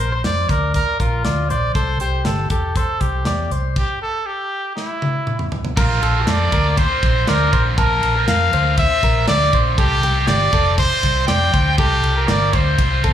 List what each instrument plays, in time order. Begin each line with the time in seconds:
0.00 fingered electric bass A#1, trumpet C5
0.12 clean electric guitar C5
0.24 fingered electric bass F2, trumpet D5, snare, closed hi-hat
0.49 fingered electric bass D2, trumpet A#4, clean electric guitar D5, kick, closed hi-hat
0.74 trumpet A#4, kick, closed hi-hat
1.00 fingered electric bass A#1, trumpet F4, clean electric guitar A#4, kick, closed hi-hat
1.25 fingered electric bass D2, clean electric guitar D5, snare, closed hi-hat
1.50 fingered electric bass A#1, clean electric guitar C5, trumpet D5, closed hi-hat
1.74 fingered electric bass C2, clean electric guitar A4, trumpet C5, kick, closed hi-hat
2.00 fingered electric bass C2, clean electric guitar G4, trumpet C5, closed hi-hat
2.25 fingered electric bass G1, trumpet A4, snare, closed hi-hat
2.50 fingered electric bass E1, trumpet G4, clean electric guitar A4, kick, closed hi-hat
2.76 trumpet A4, clean electric guitar C5, kick, closed hi-hat
3.01 fingered electric bass C2, trumpet G4, kick, closed hi-hat
3.25 fingered electric bass E2, clean electric guitar D5, snare, closed hi-hat
3.50 fingered electric bass C2, clean electric guitar C5, closed hi-hat
3.76 trumpet G4, kick, crash
4.02 trumpet A4
4.26 trumpet G4
4.76 trumpet E4, snare
5.02 high tom
5.27 mid tom
5.39 mid tom
5.52 floor tom
5.65 floor tom
5.77 fingered electric bass A#1, overdriven electric guitar D3 A#3 C4 F4, trumpet F4, clean electric guitar A#4, kick, crash
6.02 fingered electric bass A#1, clean electric guitar A4, ride
6.14 overdriven electric guitar A#3 C4 F4
6.27 fingered electric bass F2, trumpet D5, snare, ride
6.52 fingered electric bass D2, overdriven electric guitar A#2 D3 A#3 C4 F4, clean electric guitar A#4, kick, ride
6.77 trumpet C5, clean electric guitar C5, kick, ride
6.89 overdriven electric guitar A#3 C4 F4
7.03 fingered electric bass A#1, kick, ride
7.27 fingered electric bass D2, overdriven electric guitar D3 A#3 C4 F4, trumpet A#4, clean electric guitar D5, snare, ride
7.53 fingered electric bass A#1, clean electric guitar C5, kick, ride
7.77 fingered electric bass A#1, overdriven electric guitar D3 A#3 C4 F4, trumpet A#4, clean electric guitar A5, kick, ride
8.02 fingered electric bass A#1, ride
8.15 overdriven electric guitar A#3 C4 F4, clean electric guitar A#4
8.28 fingered electric bass F2, trumpet F5, snare, ride
8.53 fingered electric bass D2, overdriven electric guitar A#2 D3 A#3 C4 F4, clean electric guitar C5, ride
8.77 trumpet E5, kick, ride
8.91 overdriven electric guitar A#3 C4 F4
9.03 fingered electric bass A#1, clean electric guitar A#4, kick, ride
9.28 fingered electric bass D2, overdriven electric guitar D3 A#3 C4 F4, trumpet D5, clean electric guitar D5, snare, ride
9.53 fingered electric bass A#1, clean electric guitar C5, kick, ride
9.78 fingered electric bass C2, overdriven electric guitar C3 G3 C4 F4, trumpet G4, clean electric guitar A4, kick, ride
10.03 fingered electric bass C2, clean electric guitar G4, snare, ride
10.15 overdriven electric guitar G3 C4 F4
10.27 fingered electric bass G1, trumpet D5, snare, ride
10.53 fingered electric bass F1, overdriven electric guitar C3 G3 C4 F4, clean electric guitar A4, kick, ride
10.78 trumpet C5, clean electric guitar C5, kick, ride
10.90 overdriven electric guitar G3 C4 F4
11.03 fingered electric bass C2, kick, ride
11.27 fingered electric bass F2, overdriven electric guitar C3 G3 C4, clean electric guitar D5, trumpet G5, snare, ride
11.32 overdriven electric guitar F4
11.54 fingered electric bass D2, clean electric guitar C5, kick, ride
11.78 fingered electric bass C2, overdriven electric guitar C3 G3 C4 F4, trumpet G4, clean electric guitar A4, kick, ride
12.02 fingered electric bass C2, ride
12.15 overdriven electric guitar G3 C4 F4, clean electric guitar A#4
12.28 fingered electric bass G1, trumpet D5, snare, ride
12.53 fingered electric bass D2, overdriven electric guitar C3 G3 C4 F4, trumpet C5, clean electric guitar C5, kick, ride
12.78 fingered electric bass C2, kick, ride
12.89 overdriven electric guitar G3 C4 F4
13.04 fingered electric bass E2, clean electric guitar A4, kick, ride